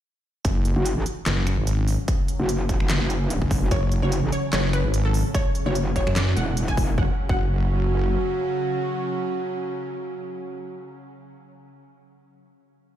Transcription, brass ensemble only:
0, 0, Header, 1, 2, 480
1, 0, Start_track
1, 0, Tempo, 408163
1, 527, Time_signature, 4, 2, 24, 8
1, 15246, End_track
2, 0, Start_track
2, 0, Title_t, "Brass ensemble"
2, 0, Program_c, 0, 61
2, 898, Note_on_c, 0, 54, 99
2, 898, Note_on_c, 0, 61, 92
2, 898, Note_on_c, 0, 66, 107
2, 1002, Note_off_c, 0, 54, 0
2, 1002, Note_off_c, 0, 61, 0
2, 1002, Note_off_c, 0, 66, 0
2, 2818, Note_on_c, 0, 54, 100
2, 2818, Note_on_c, 0, 61, 93
2, 2818, Note_on_c, 0, 66, 110
2, 2922, Note_off_c, 0, 54, 0
2, 2922, Note_off_c, 0, 61, 0
2, 2922, Note_off_c, 0, 66, 0
2, 4738, Note_on_c, 0, 54, 104
2, 4738, Note_on_c, 0, 61, 94
2, 4738, Note_on_c, 0, 66, 112
2, 4842, Note_off_c, 0, 54, 0
2, 4842, Note_off_c, 0, 61, 0
2, 4842, Note_off_c, 0, 66, 0
2, 6658, Note_on_c, 0, 54, 104
2, 6658, Note_on_c, 0, 61, 94
2, 6658, Note_on_c, 0, 66, 112
2, 6762, Note_off_c, 0, 54, 0
2, 6762, Note_off_c, 0, 61, 0
2, 6762, Note_off_c, 0, 66, 0
2, 8207, Note_on_c, 0, 54, 87
2, 8207, Note_on_c, 0, 61, 77
2, 8207, Note_on_c, 0, 66, 90
2, 8349, Note_off_c, 0, 54, 0
2, 8349, Note_off_c, 0, 61, 0
2, 8349, Note_off_c, 0, 66, 0
2, 8578, Note_on_c, 0, 54, 96
2, 8579, Note_on_c, 0, 61, 94
2, 8579, Note_on_c, 0, 66, 112
2, 12940, Note_off_c, 0, 54, 0
2, 12940, Note_off_c, 0, 61, 0
2, 12940, Note_off_c, 0, 66, 0
2, 15246, End_track
0, 0, End_of_file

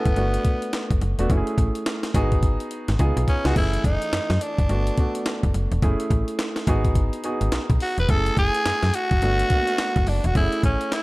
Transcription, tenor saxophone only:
0, 0, Header, 1, 2, 480
1, 0, Start_track
1, 0, Tempo, 566038
1, 1099, Time_signature, 4, 2, 24, 8
1, 9351, End_track
2, 0, Start_track
2, 0, Title_t, "Tenor saxophone"
2, 0, Program_c, 0, 66
2, 0, Note_on_c, 0, 59, 87
2, 833, Note_off_c, 0, 59, 0
2, 2789, Note_on_c, 0, 61, 85
2, 2938, Note_on_c, 0, 66, 97
2, 2950, Note_off_c, 0, 61, 0
2, 3025, Note_off_c, 0, 66, 0
2, 3032, Note_on_c, 0, 64, 92
2, 3249, Note_off_c, 0, 64, 0
2, 3269, Note_on_c, 0, 63, 97
2, 3751, Note_on_c, 0, 62, 90
2, 3764, Note_off_c, 0, 63, 0
2, 4705, Note_off_c, 0, 62, 0
2, 6635, Note_on_c, 0, 66, 99
2, 6764, Note_off_c, 0, 66, 0
2, 6781, Note_on_c, 0, 71, 98
2, 6875, Note_on_c, 0, 69, 105
2, 6887, Note_off_c, 0, 71, 0
2, 7107, Note_off_c, 0, 69, 0
2, 7113, Note_on_c, 0, 68, 121
2, 7592, Note_on_c, 0, 66, 110
2, 7605, Note_off_c, 0, 68, 0
2, 8554, Note_on_c, 0, 62, 88
2, 8567, Note_off_c, 0, 66, 0
2, 8700, Note_on_c, 0, 66, 96
2, 8713, Note_off_c, 0, 62, 0
2, 8786, Note_off_c, 0, 66, 0
2, 8792, Note_on_c, 0, 64, 91
2, 9009, Note_off_c, 0, 64, 0
2, 9034, Note_on_c, 0, 61, 90
2, 9274, Note_on_c, 0, 64, 95
2, 9287, Note_off_c, 0, 61, 0
2, 9351, Note_off_c, 0, 64, 0
2, 9351, End_track
0, 0, End_of_file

